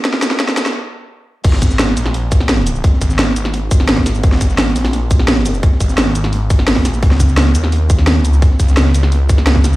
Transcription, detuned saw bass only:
1.45 1.95 G#1 loud
1.97 2.83 A#1 loud
3.02 3.35 G#1 loud
3.36 3.70 G#1 medium
3.71 4.22 G#1 loud
4.24 4.75 G#1 loud
4.76 5.62 A#1 medium
5.81 6.14 G#1 loud
6.15 6.66 G#1 medium
6.68 6.84 G#1 loud
6.85 7.01 A#1 medium
7.03 7.54 C#2 loud
7.55 8.16 D#2 medium
8.16 8.41 D2 medium
8.60 8.93 C#2 loud
8.95 9.28 C#2 medium
9.29 9.76 C#2 loud

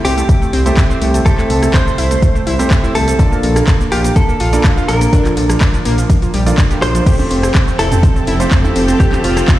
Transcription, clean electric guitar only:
0.05 1.29 G4 loud
1.26 1.74 A4 loud
1.74 2.91 C5 loud
2.95 3.64 A4 loud
3.92 4.14 G4 medium
4.16 4.88 A4 loud
4.88 5.34 A#4 loud
6.82 7.51 C5 loud
7.79 9.04 A4 loud
9.00 9.23 G4 loud
9.24 9.59 F4 medium

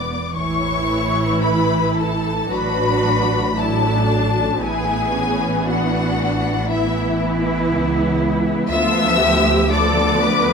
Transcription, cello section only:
2.49 3.51 F#4 medium
3.56 4.07 E4 medium
4.08 4.60 D4 medium
4.61 5.13 E4 medium
5.13 5.66 C#4 medium
5.66 6.68 D4 medium
6.67 8.71 E4 medium
8.71 9.20 F4 medium
9.21 9.72 G4 medium
9.71 10.23 A4 medium
10.22 10.53 B4 loud

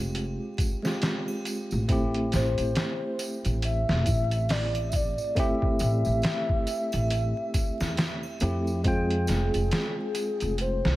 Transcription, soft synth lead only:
2.35 3.16 C5 loud
3.64 4.53 E5 loud
4.51 4.88 D5 loud
4.89 4.97 E5 medium
4.95 5.40 D5 loud
5.38 5.81 E5 loud
5.82 8.38 E5 loud
8.87 10.56 G#4 loud
10.60 10.96 C5 loud

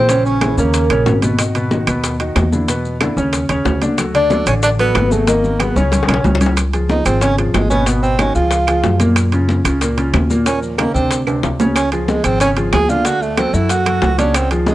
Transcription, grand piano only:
0.09 0.36 C#3 medium
0.09 0.36 C#4 medium
0.09 0.36 C#5 medium
0.41 0.55 E3 medium
0.41 0.55 E4 medium
0.41 0.55 G#4 medium
0.58 0.84 C#3 medium
0.58 0.84 C#4 medium
0.58 0.85 C#5 medium
0.91 1.04 C#3 medium
0.91 1.04 C#4 medium
0.91 1.04 C#5 medium
1.06 1.20 C#3 medium
1.06 1.20 C#4 medium
1.06 1.20 C#5 medium
1.23 1.36 B2 medium
1.23 1.36 B3 medium
1.23 1.36 B4 medium
1.39 1.52 D#3 medium
1.39 1.52 D#4 medium
1.39 1.52 F#4 medium
1.55 1.68 B2 medium
1.55 1.68 B3 medium
1.55 1.69 B4 medium
1.71 1.84 D#3 medium
1.71 1.85 D#4 medium
1.71 1.85 F#4 medium
1.87 2.14 B2 medium
1.87 2.14 B3 medium
1.87 2.14 B4 medium
2.19 2.46 D#3 medium
2.19 2.46 D#4 medium
2.19 2.46 F#4 medium
2.52 2.65 D3 medium
2.52 2.66 D4 medium
2.52 2.66 E4 medium
2.68 2.95 B2 medium
2.68 2.95 B3 medium
2.68 2.95 B4 medium
3.01 3.14 D3 medium
3.01 3.14 D4 medium
3.01 3.14 E4 medium
3.17 3.44 C#3 medium
3.17 3.44 C#4 medium
3.17 3.44 C#5 medium
3.49 3.62 C#3 medium
3.49 3.63 C#4 medium
3.49 3.63 C#5 medium
3.65 3.79 C#3 medium
3.65 3.79 C#4 medium
3.65 3.79 C#5 medium
3.82 3.95 D3 medium
3.82 3.95 D4 medium
3.82 3.95 D5 medium
3.98 4.11 F#3 medium
3.98 4.12 F#4 medium
3.98 4.12 A4 medium
4.14 4.28 D3 medium
4.14 4.28 D4 medium
4.14 4.28 D5 medium
4.30 4.44 F#3 medium
4.30 4.44 F#4 medium
4.30 4.44 A4 medium
4.47 4.73 D3 medium
4.47 4.73 D4 medium
4.47 4.73 D5 medium
4.79 5.06 F#3 medium
4.79 5.06 F#4 medium
4.79 5.06 A4 medium
5.11 5.25 F#3 medium
5.11 5.25 F#4 medium
5.11 5.25 G#4 medium
5.28 5.54 D#3 medium
5.28 5.54 D#4 medium
5.28 5.54 D#5 medium
5.59 5.73 F#3 medium
5.59 5.73 F#4 medium
5.59 5.73 G#4 medium
5.76 6.03 C#3 medium
5.76 6.03 C#4 medium
5.76 6.03 C#5 medium
6.09 6.22 C#3 medium
6.09 6.22 C#4 medium
6.09 6.22 C#5 medium
6.25 6.38 C#3 medium
6.25 6.38 C#4 medium
6.25 6.39 C#5 medium
6.41 6.54 C#3 medium
6.41 6.54 C#4 medium
6.41 6.55 C#5 medium
6.74 7.00 F3 medium
6.74 7.00 F4 medium
6.74 7.00 G#4 medium
7.05 7.19 F3 medium
7.05 7.19 F4 medium
7.05 7.19 G#4 medium
7.21 7.35 C#3 medium
7.21 7.35 C#4 medium
7.21 7.35 C#5 medium
7.38 7.65 F3 medium
7.38 7.64 F4 medium
7.38 7.65 G#4 medium
7.71 7.84 B2 medium
7.71 7.84 B3 medium
7.71 7.84 B4 medium
7.87 8.13 B2 medium
7.87 8.14 B3 medium
7.87 8.14 B4 medium
8.19 8.33 D#3 medium
8.19 8.33 D#4 medium
8.19 8.33 F#4 medium
8.36 8.62 F3 medium
8.36 8.62 F4 medium
8.36 8.62 G#4 medium
8.67 8.94 F3 medium
8.67 8.94 F4 medium
8.67 8.95 G#4 medium
9.00 9.27 A#2 medium
9.00 9.27 A#3 medium
9.00 9.27 A#4 medium
9.33 9.59 C#3 medium
9.33 9.59 C#4 medium
9.33 9.60 F4 medium
9.65 9.79 C#3 medium
9.65 9.79 C#4 medium
9.65 9.79 F4 medium
9.82 9.95 A#2 medium
9.82 9.95 A#3 medium
9.82 9.95 A#4 medium
9.97 10.24 C#3 medium
9.97 10.24 C#4 medium
9.97 10.24 F4 medium
10.30 10.43 A#2 medium
10.30 10.43 A#3 medium
10.30 10.44 A#4 medium
10.46 10.73 A#2 medium
10.46 10.73 A#3 medium
10.46 10.73 A#4 medium
10.79 10.92 C#3 medium
10.79 10.92 C#4 medium
10.79 10.93 D#4 medium
10.96 11.22 C3 medium
10.96 11.22 C4 medium
10.96 11.22 D4 medium
11.27 11.54 C3 medium
11.27 11.54 C4 medium
11.27 11.54 D4 medium
11.60 11.86 C#3 medium
11.60 11.86 C#4 medium
11.60 11.87 C#5 medium
11.92 12.19 F3 medium
11.92 12.19 F4 medium
11.92 12.19 G#4 medium
12.25 12.38 F3 medium
12.25 12.38 F4 medium
12.25 12.38 G#4 medium
12.41 12.54 C#3 medium
12.41 12.54 C#4 medium
12.41 12.54 C#5 medium
12.57 12.83 F3 medium
12.57 12.83 F4 medium
12.57 12.84 G#4 medium
12.89 13.02 D3 medium
12.89 13.02 D4 medium
12.89 13.03 D5 medium
13.05 13.32 D3 medium
13.05 13.32 D4 medium
13.05 13.32 D5 medium
13.38 13.51 F#3 medium
13.38 13.51 F#4 medium
13.38 13.51 A4 medium
13.54 13.80 F#3 medium
13.54 13.81 F#4 medium
13.54 13.81 A4 medium
13.86 14.12 F#3 medium
13.86 14.13 F#4 medium
13.86 14.13 A4 medium
14.18 14.45 C#3 medium
14.18 14.45 C#4 medium
14.18 14.45 C#5 medium
14.51 14.75 F3 medium
14.51 14.75 F4 medium
14.51 14.75 G#4 medium

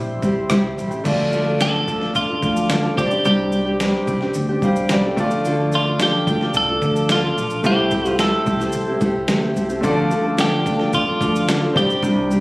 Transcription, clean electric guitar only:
0.00 0.47 G4 medium
1.62 2.12 A4 loud
2.16 2.94 F4 medium
2.98 3.23 G4 medium
3.25 3.76 G4 medium
5.75 5.99 F4 medium
6.02 6.57 G4 loud
6.57 7.11 A4 loud
7.12 7.62 F4 medium
7.66 8.20 G4 loud
8.20 9.25 A4 medium
10.41 10.91 G4 loud
10.95 11.77 F4 loud
11.77 12.02 G4 medium

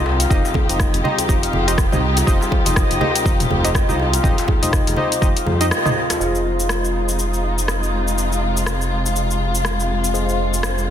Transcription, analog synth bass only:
0.00 0.26 C2 medium
0.31 0.41 F1 loud
0.69 0.87 F1 medium
0.94 1.02 F1 loud
1.29 1.48 F1 medium
1.53 1.87 F1 loud
1.92 2.23 C2 medium
2.27 2.38 F1 loud
2.66 2.84 F1 medium
2.91 2.99 F1 loud
3.26 3.45 F1 medium
3.50 3.83 F1 loud
3.89 4.20 C2 medium
4.24 4.35 F1 loud
4.63 4.80 F1 medium
4.87 4.95 F1 loud
5.22 5.33 F1 loud
5.47 5.71 F2 medium
6.20 10.90 F1 medium

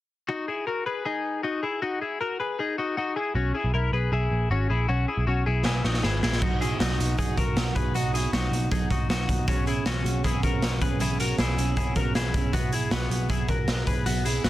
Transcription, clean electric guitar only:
0.29 0.48 D#4 medium
0.29 0.48 F#4 medium
0.48 0.67 E4 soft
0.48 0.67 G#4 medium
0.67 0.86 F#4 soft
0.67 0.86 A#4 medium
0.86 1.04 G#4 soft
0.86 1.05 B4 medium
1.05 1.42 D#4 medium
1.05 1.41 G#4 medium
1.43 1.63 D#4 medium
1.43 1.62 F#4 medium
1.63 1.82 E4 soft
1.63 1.82 G#4 medium
1.82 2.02 D#4 medium
1.82 2.01 F#4 medium
2.02 2.20 E4 soft
2.02 2.20 G#4 medium
2.21 2.40 F#4 soft
2.21 2.39 A#4 medium
2.40 2.58 G#4 medium
2.40 2.59 B4 medium
2.59 2.78 D#4 medium
2.59 2.78 G#4 medium
2.78 2.97 D#4 medium
2.78 2.96 F#4 medium
2.97 3.17 D#4 medium
2.97 3.16 F#4 medium
3.16 3.36 E4 soft
3.16 3.35 G#4 medium
3.35 3.55 C#4 medium
3.35 3.54 F#4 medium
3.55 3.73 E4 soft
3.55 3.74 G#4 medium
3.74 3.93 E4 soft
3.74 3.93 A#4 medium
3.93 4.12 G#4 soft
3.93 4.12 B4 medium
4.13 4.49 E4 medium
4.13 4.48 G#4 medium
4.51 4.70 C#4 medium
4.51 4.69 F#4 medium
4.70 4.89 E4 medium
4.70 4.88 G#4 medium
4.89 5.08 C#4 medium
4.89 5.08 F#4 medium
5.08 5.28 E4 soft
5.08 5.27 G#4 medium
5.27 5.47 C#4 soft
5.27 5.46 F#4 medium
5.46 5.65 E4 soft
5.46 5.64 G#4 medium
5.65 5.85 E4 medium
5.65 5.84 G#4 medium
5.85 6.04 D#4 medium
5.85 6.03 F#4 medium
6.03 6.22 E4 medium
6.03 6.22 G#4 medium
6.23 6.42 E4 medium
6.23 6.42 G#4 medium
6.42 6.62 D#4 medium
6.42 6.61 F#4 medium
6.61 6.81 E4 medium
6.61 6.80 G#4 medium
6.80 7.17 D#4 soft
6.80 7.16 F#4 medium
7.19 7.38 D#4 medium
7.19 7.38 G#4 medium
7.38 7.74 F#4 medium
7.38 7.74 A#4 medium
7.76 7.95 G#4 medium
7.76 7.95 B4 medium
7.95 8.15 D#4 medium
7.95 8.14 F#4 medium
8.14 8.34 E4 soft
8.14 8.33 G#4 medium
8.33 8.70 D#4 soft
8.33 8.69 F#4 medium
8.72 8.90 D#4 medium
8.72 8.90 G#4 medium
8.91 9.10 D#4 medium
8.91 9.09 F#4 medium
9.10 9.46 D#4 medium
9.10 9.46 F#4 medium
9.48 9.67 C#4 medium
9.48 9.67 F#4 medium
9.67 9.87 E4 medium
9.67 9.86 G#4 medium
9.86 10.23 C#4 soft
9.86 10.22 F#4 medium
10.25 10.43 E4 medium
10.25 10.44 G#4 medium
10.44 10.80 F#4 medium
10.44 10.79 A#4 medium
10.82 11.00 G#4 medium
10.82 11.01 B4 medium
11.01 11.20 E4 medium
11.01 11.20 G#4 medium
11.20 11.38 F#4 medium
11.20 11.39 A#4 medium
11.39 11.75 E4 soft
11.39 11.75 G#4 medium
11.77 11.96 E4 medium
11.77 11.96 G#4 medium
11.96 12.15 F#4 medium
11.96 12.15 A#4 medium
12.15 12.52 E4 medium
12.15 12.51 G#4 medium
12.54 12.73 B3 medium
12.54 12.73 F#4 medium
12.73 12.92 E4 soft
12.73 12.92 G#4 medium
12.92 13.28 B3 soft
12.92 13.28 F#4 medium
13.30 13.49 E4 medium
13.30 13.49 G#4 medium
13.49 13.86 F#4 medium
13.49 13.85 A#4 medium
13.87 14.07 G#4 medium
13.87 14.06 B4 medium
14.06 14.25 B3 medium
14.06 14.25 F#4 medium
14.25 14.45 E4 medium
14.25 14.44 G#4 medium
14.44 14.50 B3 medium
14.44 14.50 F#4 medium

